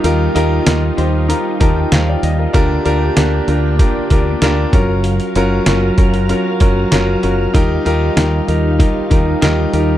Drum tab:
HH |x-x-x-x-x-x-x-x-|x-x-x-x-x-x-x-x-|xxx-x-xxx-x-x-x-|x-x-x-x-x-x-x-x-|
SD |----o-------o---|----o-------o---|----o-------o---|----o-------o---|
BD |----------o-----|o-------o-o---o-|------o---o-----|o-------o-o-----|